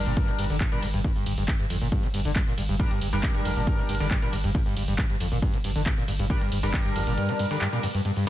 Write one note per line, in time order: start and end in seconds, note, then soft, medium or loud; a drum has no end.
0.00 0.47 G3 medium
0.00 0.47 D4 medium
0.00 0.47 A#4 loud
0.06 0.17 G1 medium
0.06 0.12 A#2 medium
0.06 closed hi-hat medium
0.17 0.30 G2 loud
0.17 kick loud
0.17 closed hi-hat medium
0.28 0.38 G1 medium
0.28 0.32 D3 loud
0.28 closed hi-hat medium
0.39 0.49 G1 loud
0.39 0.45 G2 medium
0.39 open hi-hat loud
0.39 ride medium
0.44 closed hi-hat medium
0.50 0.60 G1 medium
0.50 0.56 D3 loud
0.50 closed hi-hat medium
0.61 0.67 G2 loud
0.61 kick loud
0.61 clap loud
0.61 closed hi-hat medium
0.72 0.82 G1 medium
0.72 0.78 A#2 loud
0.72 0.82 G3 medium
0.72 0.82 D4 medium
0.72 0.82 A#4 medium
0.72 closed hi-hat medium
0.82 0.93 G1 loud
0.82 0.86 G2 medium
0.82 open hi-hat loud
0.82 ride medium
0.94 1.04 G1 medium
0.94 1.00 G2 loud
0.94 closed hi-hat medium
1.04 1.11 G2 loud
1.04 kick loud
1.04 closed hi-hat medium
1.16 1.26 G1 medium
1.16 1.24 G2 loud
1.16 open hi-hat medium
1.26 1.37 G1 loud
1.26 1.33 G2 medium
1.26 open hi-hat loud
1.26 ride medium
1.38 1.48 G1 medium
1.38 1.43 G2 medium
1.38 closed hi-hat medium
1.48 1.54 G2 loud
1.48 kick loud
1.48 clap loud
1.48 closed hi-hat medium
1.59 1.69 G1 medium
1.59 1.65 G2 loud
1.59 closed hi-hat medium
1.70 1.81 G1 loud
1.70 1.76 F2 loud
1.70 open hi-hat loud
1.70 ride medium
1.81 1.92 G1 medium
1.81 1.87 A#2 medium
1.81 closed hi-hat medium
1.92 2.05 G2 loud
1.92 kick loud
1.92 closed hi-hat medium
2.03 2.13 G1 medium
2.03 2.07 D3 loud
2.03 closed hi-hat medium
2.14 2.25 G1 loud
2.14 2.20 G2 medium
2.14 open hi-hat loud
2.14 ride medium
2.20 closed hi-hat medium
2.25 2.36 G1 medium
2.25 2.31 D3 loud
2.25 closed hi-hat medium
2.36 2.42 G2 loud
2.36 kick loud
2.36 clap loud
2.36 closed hi-hat medium
2.47 2.57 G1 medium
2.47 2.53 A#2 loud
2.47 open hi-hat medium
2.58 2.68 G1 loud
2.58 2.61 G2 medium
2.58 open hi-hat loud
2.58 ride medium
2.69 2.79 G1 medium
2.69 2.75 G2 loud
2.69 closed hi-hat medium
2.79 2.86 G2 loud
2.79 2.91 G3 medium
2.79 2.91 D4 medium
2.79 2.91 A#4 loud
2.79 kick loud
2.79 closed hi-hat medium
2.91 3.01 G1 medium
2.91 3.00 G2 loud
2.91 closed hi-hat medium
3.01 3.12 G1 loud
3.01 3.08 G2 medium
3.01 open hi-hat loud
3.01 ride medium
3.13 3.23 G1 medium
3.13 3.19 G2 medium
3.13 3.98 G3 medium
3.13 3.98 D4 medium
3.13 3.98 A#4 loud
3.13 closed hi-hat medium
3.23 3.30 G2 loud
3.23 kick loud
3.23 clap loud
3.23 closed hi-hat medium
3.35 3.45 G1 medium
3.35 3.40 G2 loud
3.35 closed hi-hat medium
3.45 3.56 G1 loud
3.45 3.51 F2 loud
3.45 open hi-hat loud
3.45 ride medium
3.56 3.67 G1 medium
3.56 3.62 A#2 medium
3.56 closed hi-hat soft
3.67 3.80 G2 loud
3.67 kick loud
3.67 closed hi-hat medium
3.78 3.88 G1 medium
3.78 3.82 D3 loud
3.78 closed hi-hat medium
3.89 4.00 G1 loud
3.89 3.95 G2 medium
3.89 open hi-hat loud
3.89 ride medium
3.95 closed hi-hat medium
4.00 4.11 G1 medium
4.00 4.06 D3 loud
4.00 4.17 G3 medium
4.00 4.17 D4 medium
4.00 4.17 A#4 medium
4.00 closed hi-hat medium
4.11 4.17 G2 loud
4.11 kick loud
4.11 clap loud
4.11 closed hi-hat medium
4.22 4.32 G1 medium
4.22 4.28 A#2 loud
4.22 4.33 G3 medium
4.22 4.33 D4 medium
4.22 4.33 A#4 medium
4.22 closed hi-hat soft
4.33 4.43 G1 loud
4.33 4.37 G2 medium
4.33 open hi-hat loud
4.33 ride medium
4.44 4.55 G1 medium
4.44 4.50 G2 loud
4.44 closed hi-hat medium
4.55 4.61 G2 loud
4.55 kick loud
4.55 closed hi-hat medium
4.66 4.76 G1 medium
4.66 4.75 G2 loud
4.66 open hi-hat medium
4.77 4.87 G1 loud
4.77 4.83 G2 medium
4.77 open hi-hat loud
4.77 ride medium
4.88 4.98 G1 medium
4.88 4.94 G2 medium
4.88 closed hi-hat medium
4.98 5.05 G2 loud
4.98 kick loud
4.98 clap loud
4.98 closed hi-hat medium
5.10 5.20 G1 medium
5.10 5.16 G2 loud
5.10 closed hi-hat medium
5.20 5.31 G1 loud
5.20 5.27 F2 loud
5.20 open hi-hat loud
5.20 ride medium
5.32 5.42 G1 medium
5.32 5.38 A#2 medium
5.32 closed hi-hat medium
5.42 5.55 G2 loud
5.42 kick loud
5.42 closed hi-hat medium
5.54 5.64 G1 medium
5.54 5.57 D3 loud
5.54 closed hi-hat medium
5.64 5.75 G1 loud
5.64 5.70 G2 medium
5.64 open hi-hat loud
5.64 ride medium
5.70 closed hi-hat medium
5.76 5.86 G1 medium
5.76 5.81 D3 loud
5.76 closed hi-hat medium
5.86 5.92 G2 loud
5.86 kick loud
5.86 clap loud
5.86 closed hi-hat medium
5.97 6.07 G1 medium
5.97 6.03 A#2 loud
5.97 open hi-hat medium
6.08 6.19 G1 loud
6.08 6.12 G2 medium
6.08 open hi-hat loud
6.08 ride medium
6.19 6.30 G1 medium
6.19 6.25 G2 loud
6.19 closed hi-hat medium
6.30 6.36 G2 loud
6.30 6.41 G3 medium
6.30 6.41 D4 medium
6.30 6.41 A#4 loud
6.30 kick loud
6.30 closed hi-hat medium
6.41 6.51 G1 medium
6.41 6.50 G2 loud
6.41 closed hi-hat soft
6.52 6.62 G1 loud
6.52 6.58 G2 medium
6.52 open hi-hat loud
6.52 ride medium
6.63 6.73 G1 medium
6.63 6.69 G2 medium
6.63 7.48 G3 medium
6.63 7.48 D4 medium
6.63 7.48 A#4 loud
6.63 closed hi-hat medium
6.74 6.80 G2 loud
6.74 kick loud
6.74 clap loud
6.74 closed hi-hat medium
6.85 6.95 G1 medium
6.85 6.91 G2 loud
6.85 closed hi-hat medium
6.96 7.06 G1 loud
6.96 7.02 F2 loud
6.96 open hi-hat loud
6.96 ride medium
7.07 7.17 G1 medium
7.07 7.13 A#2 medium
7.07 closed hi-hat medium
7.17 7.30 G2 loud
7.17 closed hi-hat medium
7.29 7.32 D3 loud
7.29 closed hi-hat medium
7.39 7.46 G2 medium
7.39 open hi-hat loud
7.39 ride medium
7.45 closed hi-hat medium
7.51 7.57 D3 loud
7.51 7.68 G3 medium
7.51 7.68 D4 medium
7.51 7.68 A#4 medium
7.51 closed hi-hat medium
7.61 7.68 G2 loud
7.61 clap loud
7.61 closed hi-hat medium
7.73 7.78 A#2 loud
7.73 7.83 G3 medium
7.73 7.83 D4 medium
7.73 7.83 A#4 medium
7.73 open hi-hat medium
7.83 7.87 G2 medium
7.83 open hi-hat loud
7.83 ride medium
7.94 8.00 G2 loud
7.94 closed hi-hat medium
8.05 8.11 G2 loud
8.05 closed hi-hat medium
8.16 8.25 G2 loud
8.16 open hi-hat medium